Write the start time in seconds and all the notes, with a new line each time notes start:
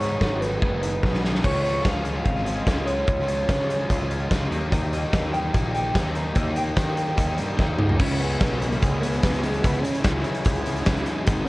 Already playing: G#2 B4 C#5 D#5 G#5 D#6
0.00 G#2 D#3 G#3 B3 D#4 B4, closed hi-hat
0.20 G#1 G#2 D#3 G#3 B3 D#4 B4, kick, snare
0.40 G#2 D#3 G#3 B3 D#4 B4, closed hi-hat
0.60 F#1 G#2 D#3 G#3 B3 D#4 B4, kick
0.80 G#2 D#3 G#3 B3 D#4 B4, closed hi-hat
1.02 B1 G#2 D#3 G#3 B3 D#4 B4, kick, snare
1.14 snare
1.22 G#2 D#3 G#3 B3 D#4 B4, snare
1.35 snare
1.43 C#2 C#3 G#3 C#4 F4 C#5, kick, crash
1.62 F3 C#4 F4 C#5, closed hi-hat
1.67 G#3
1.84 C#2 C#3 F3 G#3 C#4 F4 F5, kick, snare, closed hi-hat
1.95 snare
2.04 G#3, closed hi-hat
2.24 G#1 C#3 G#3 C#4 D#4 F4 F5, kick, closed hi-hat
2.44 C#4 F4 D#5, closed hi-hat
2.48 G#3
2.65 C#2 C#3 G#3 C#4 D#4 F4, kick, snare, closed hi-hat
2.85 G#3 C#4 F4 C#5, closed hi-hat
3.05 C#2 C#3 G#3 C#4 F4, kick, closed hi-hat
3.26 F3 G#3 C#4 F4, closed hi-hat
3.46 C#3 F3 G#3 C#4 F4, kick, snare, closed hi-hat
3.60 snare
3.69 G#3, closed hi-hat
3.88 C#2 C#3 G#3 C#4 D#4 F4, kick, closed hi-hat
4.09 G#3 C#4 F4, closed hi-hat
4.29 C#2 C#3 G#3 C#4 D#4 F4, kick, snare, closed hi-hat
4.50 D#2 D#3 G3 A#3 D#4, closed hi-hat
4.70 D#3 G3 A#3 D#4 G4 D#5 G5, kick, closed hi-hat
4.91 G3 A#3 D#4 D#5, closed hi-hat
5.12 D#2 D#3 G3 A#3 D#4, kick, snare, closed hi-hat
5.25 snare
5.33 A#3 G5, closed hi-hat
5.52 A#1 D#3 G3 A#3 D#4, kick, closed hi-hat
5.72 G3 A#3 D#4 G4 G5, closed hi-hat
5.94 D#2 D#3 G3 A#3 D#4 D#5, kick, snare, closed hi-hat
6.14 G3 A#3 D#4, closed hi-hat
6.35 D#2 D#3 G3 A#3 D#4 D#5, kick, closed hi-hat
6.55 G3 A#3 D#4 G5, closed hi-hat
6.76 D#3 G3 A#3 D#4, kick, snare, closed hi-hat
6.97 A#3, closed hi-hat
7.17 D#2 D#3 G3 A#3 D#4, kick, closed hi-hat
7.37 G2 A#3 D#4 G4, closed hi-hat
7.41 G3
7.57 D#2 D#3 G3 A#3 D#4, kick, snare
7.78 C#2 G3 A#3 D#4, mid tom
7.90 floor tom
7.97 C#2 C#3 G#3 C#4 G#4 C#5 E5 G#5, kick, crash
8.02 E4
8.19 G#3 B3 C#4 E4, closed hi-hat
8.31 closed hi-hat
8.41 B1 C#3 E3 G#3 C#4 E4, kick, snare, closed hi-hat
8.59 G#3 B3, closed hi-hat
8.70 A#3, closed hi-hat
8.82 C#2 G#4, kick, closed hi-hat
9.01 G#3 A#3 B3 C#4 E4, closed hi-hat
9.12 B3, closed hi-hat
9.21 C#2 C#3 G#3 C#4 E4, kick, snare, closed hi-hat
9.33 closed hi-hat
9.42 E3 G#3 C#4 E4, closed hi-hat
9.53 closed hi-hat
9.61 C#2 C#3 G#3 B3 C#4 E4, kick, closed hi-hat
9.74 closed hi-hat
9.81 G#3 C#4 E4, closed hi-hat
9.94 closed hi-hat
10.00 C#3 G#3 D#4
10.04 C#2 E3 C#4 E4, kick, snare, closed hi-hat
10.22 G#3 E4, closed hi-hat
10.34 closed hi-hat
10.44 C#2 G#4, kick, closed hi-hat
10.55 closed hi-hat
10.64 G#3 B3 C#4 E4, closed hi-hat
10.76 closed hi-hat
10.82 C#3 G#3 D#4, closed hi-hat
10.86 C#2 C#4 E4, kick, snare
10.96 closed hi-hat
11.03 C#4 D#4 E4, closed hi-hat
11.08 E3 G#3
11.25 G#1 G#2 D#3 G#3 B3 D#4 D#5 F#5, kick, closed hi-hat
11.45 C#4 D#4